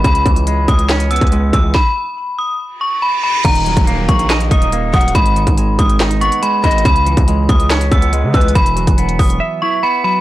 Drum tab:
CC |------------------------------------------------------------------------------------------------|------------------------------------------------------------------------------------------------|x-----------------------------------------------------------------------------------------------|------------------------------------------------------------------------------------------------|
HH |x-----x-----x-----x-----x-----------x-----x-----x-----x-----x--x--x--x--x-----------x-----------|------------------------------------------------------------------------------------------------|x-----x-----x-----x-----x-----------x-----x-----x-----x-----x-----x-----x-----------x---x---x---|x-----x-----x-----x-----x-----------x-----x-----x-----x-----x-----x-----x-----------x---x---x---|
CP |------------------------------------------------x-----------------------------------------------|------------------------------------------------------------------------------------------------|------------------------------------------------x-----------------------------------------------|------------------------------------------------x-----------------------------------------------|
SD |------------------------------------------------o-----------------------------------------------|o-----------------------------------------------------------------------------------------------|------------------------------------------------o-----------------------------------------------|------------------------------------------------o-----------------------------------------------|
BD |o-----------o-----------------------o-----------------------------o-----------------o-----------|o-----------------------------------------------------------------------------------------------|o-----------------o-----------------o-----------------------o-----------------------o-----------|o-----------------o-----------------o-----------------------------------------------o-----------|

CC |------------------------------------------------------------------------------------------------|------------------------------------------------------------------------------------------------|
HH |x-----x-----x-----x-----x-----------x-----x-----x-----x-----x-----x-----x-----------x---x---x---|x-----x-----x-----x-----x-----x-----o-----x-----------------------------------------------------|
CP |------------------------------------------------x-----------------------------------------------|------------------------------------------------------------------------------------------------|
SD |------------------------------------------------o-----------------------------------------------|------------------------------------------------------------------------------------------------|
BD |o-----------------o-----------------o-----------------------o-----------------------o-----------|o-----------------o-----------------o-----------------------------------------------------------|